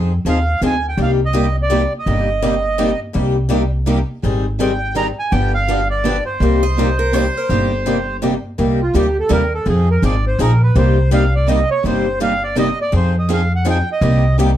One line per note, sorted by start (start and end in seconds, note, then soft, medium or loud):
0.00 0.18 F2 medium
0.00 0.11 F3 soft
0.00 0.11 C4 medium
0.00 0.12 D#4 medium
0.00 0.12 G#4 medium
0.25 0.56 D#2 medium
0.25 0.37 F3 medium
0.25 0.37 C4 medium
0.25 0.38 D#4 medium
0.25 0.37 G#4 medium
0.25 0.61 F5 medium
0.61 0.92 D2 medium
0.61 0.73 F3 medium
0.61 0.73 C4 medium
0.61 0.73 D#4 medium
0.61 0.74 G#4 medium
0.66 0.87 G#5 medium
0.88 0.99 G5 medium
0.97 1.84 C2 medium
0.97 1.19 C3 medium
0.97 1.19 G3 medium
0.97 1.19 A#3 medium
0.97 1.19 D#4 medium
0.97 1.19 G4 medium
1.02 1.11 F5 medium
1.25 1.56 D#5 medium
1.33 1.45 C3 medium
1.33 1.45 G3 medium
1.33 1.45 A#3 medium
1.33 1.45 D#4 medium
1.33 1.45 G4 loud
1.63 1.93 D5 medium
1.70 1.81 C3 medium
1.70 1.81 G3 medium
1.70 1.81 A#3 medium
1.70 1.81 D#4 loud
1.70 1.82 G4 medium
1.99 3.00 D#5 medium
2.06 2.93 G1 medium
2.06 2.27 C3 medium
2.06 2.28 G3 medium
2.06 2.28 A#3 medium
2.06 2.28 D#4 medium
2.06 2.28 G4 medium
2.42 2.53 C3 medium
2.42 2.54 G3 loud
2.42 2.54 A#3 medium
2.42 2.54 D#4 medium
2.42 2.54 G4 loud
2.78 2.89 C3 medium
2.78 2.89 G3 medium
2.78 2.90 A#3 medium
2.78 2.90 D#4 loud
2.78 2.90 G4 loud
3.13 4.02 C2 medium
3.13 3.35 C3 medium
3.13 3.35 G3 medium
3.13 3.35 A#3 medium
3.13 3.35 D#4 medium
3.13 3.36 G4 medium
3.49 3.61 C3 medium
3.49 3.61 G3 medium
3.49 3.61 A#3 medium
3.49 3.61 D#4 medium
3.49 3.62 G4 medium
3.86 3.98 C3 medium
3.86 3.98 G3 medium
3.86 3.98 A#3 medium
3.86 3.98 D#4 medium
3.86 3.98 G4 medium
4.23 5.10 G#1 medium
4.23 4.44 D#3 medium
4.23 4.44 G3 medium
4.23 4.45 C4 medium
4.23 4.45 D#4 medium
4.23 4.45 G#4 medium
4.60 4.71 D#3 medium
4.60 4.71 G3 medium
4.60 4.71 C4 medium
4.60 4.71 D#4 loud
4.60 4.71 G#4 loud
4.60 4.94 G5 medium
4.95 5.07 D#3 medium
4.95 5.07 G3 medium
4.95 5.07 C4 medium
4.95 5.07 D#4 medium
4.95 5.07 G#4 medium
4.95 5.07 A#5 loud
5.19 5.33 G#5 medium
5.31 6.19 G1 medium
5.31 5.53 D3 medium
5.31 5.53 F3 medium
5.31 5.53 B3 medium
5.31 5.53 D4 medium
5.31 5.53 G4 medium
5.31 5.52 G5 medium
5.54 5.88 F5 medium
5.68 5.79 D3 medium
5.68 5.79 F3 medium
5.68 5.80 B3 medium
5.68 5.80 D4 medium
5.68 5.80 G4 loud
5.90 6.24 D5 medium
6.05 6.16 D3 medium
6.05 6.16 F3 medium
6.05 6.16 B3 medium
6.05 6.16 D4 loud
6.05 6.16 G4 medium
6.25 8.17 C5 medium
6.40 7.27 C2 medium
6.40 6.62 C3 medium
6.40 6.62 G3 medium
6.40 6.62 A#3 medium
6.40 6.63 D#4 medium
6.40 6.63 G4 medium
6.63 6.96 D#5 loud
6.78 6.88 C3 medium
6.78 6.89 G3 medium
6.78 6.89 A#3 loud
6.78 6.89 D#4 medium
6.78 6.89 G4 medium
6.99 7.14 A#4 medium
7.13 7.24 C3 medium
7.13 7.24 G3 medium
7.13 7.24 A#3 medium
7.13 7.25 D#4 medium
7.13 7.25 G4 medium
7.13 7.37 C5 medium
7.37 7.50 A#4 medium
7.49 8.36 G1 medium
7.49 7.71 C3 medium
7.49 7.71 G3 medium
7.49 7.70 A#3 medium
7.49 7.71 D#4 medium
7.49 8.22 G4 medium
7.49 7.71 G4 medium
7.86 7.97 C3 medium
7.86 7.97 G3 medium
7.86 7.97 A#3 medium
7.86 7.97 D#4 medium
7.86 7.97 G4 medium
8.22 8.33 C3 medium
8.22 8.33 G3 medium
8.22 8.33 A#3 medium
8.22 8.33 D#4 medium
8.22 8.34 G4 medium
8.58 8.87 C2 medium
8.58 8.79 C3 medium
8.58 8.79 G3 medium
8.58 8.79 A#3 medium
8.58 8.79 D#4 medium
8.58 8.80 G4 medium
8.83 8.95 F4 medium
8.94 9.25 D2 medium
8.94 9.05 C3 medium
8.94 9.06 G3 loud
8.94 9.06 A#3 medium
8.94 9.06 D#4 medium
8.94 9.06 G4 loud
8.94 9.17 G4 medium
9.20 9.32 A4 medium
9.29 9.61 D#2 medium
9.29 9.41 C3 loud
9.29 9.41 G3 medium
9.29 9.41 A#3 medium
9.29 9.41 D#4 medium
9.29 9.41 G4 medium
9.29 9.53 A#4 medium
9.55 9.67 A4 medium
9.65 9.95 F2 medium
9.65 9.87 F3 medium
9.65 9.87 C4 medium
9.65 9.88 D#4 medium
9.65 9.88 G#4 medium
9.65 9.89 G#4 medium
9.91 10.03 A#4 medium
10.02 10.33 G#1 medium
10.02 10.14 F3 medium
10.02 10.14 C4 medium
10.02 10.14 D#4 medium
10.02 10.14 G#4 medium
10.02 10.25 D5 medium
10.27 10.40 C5 medium
10.39 10.70 A#1 medium
10.39 10.50 F3 medium
10.39 10.51 C4 medium
10.39 10.51 D#4 loud
10.39 10.51 G#4 loud
10.39 10.62 A#4 medium
10.63 10.76 B4 medium
10.75 11.62 C2 loud
10.75 10.97 C3 medium
10.75 10.97 G3 medium
10.75 10.97 A#3 medium
10.75 10.97 D#4 medium
10.75 10.97 G4 medium
10.75 11.10 C5 medium
11.11 11.23 C3 medium
11.11 11.23 G3 medium
11.11 11.23 A#3 medium
11.11 11.23 D#4 loud
11.11 11.23 G4 loud
11.11 11.34 F5 medium
11.35 11.48 D5 medium
11.48 11.59 C3 medium
11.48 11.59 G3 medium
11.48 11.60 A#3 medium
11.48 11.60 D#4 loud
11.48 11.60 G4 medium
11.48 11.70 D#5 medium
11.71 11.84 C#5 medium
11.84 12.71 G1 medium
11.84 12.06 C3 medium
11.84 12.06 G3 medium
11.84 12.06 A#3 medium
11.84 12.06 D#4 medium
11.84 12.06 G4 medium
11.84 12.19 C5 medium
12.20 12.31 C3 medium
12.20 12.32 G3 medium
12.20 12.32 A#3 medium
12.20 12.32 D#4 medium
12.20 12.32 G4 medium
12.20 12.43 F5 medium
12.43 12.57 D5 medium
12.56 12.68 C3 medium
12.56 12.68 G3 medium
12.56 12.68 A#3 medium
12.56 12.68 D#4 medium
12.56 12.68 G4 medium
12.56 12.79 D#5 loud
12.81 12.94 D5 medium
12.92 13.80 F2 medium
12.92 13.14 F3 medium
12.92 13.14 C4 medium
12.92 13.14 D#4 medium
12.92 13.14 G#4 medium
12.92 13.16 C5 medium
13.19 13.31 D#5 medium
13.29 13.40 F3 loud
13.29 13.41 C4 medium
13.29 13.41 D#4 medium
13.29 13.41 G#4 medium
13.33 13.53 F5 medium
13.55 13.67 F#5 medium
13.65 13.76 F3 medium
13.65 13.76 C4 medium
13.65 13.77 D#4 loud
13.65 13.77 G#4 loud
13.70 13.89 G5 medium
13.92 14.37 D#5 medium
14.01 14.57 C2 loud
14.01 14.23 C3 medium
14.01 14.23 G3 medium
14.01 14.23 A#3 medium
14.01 14.24 D#4 medium
14.01 14.23 G4 medium
14.39 14.50 C3 medium
14.39 14.50 G3 medium
14.39 14.50 A#3 medium
14.39 14.50 D#4 loud
14.39 14.50 G4 loud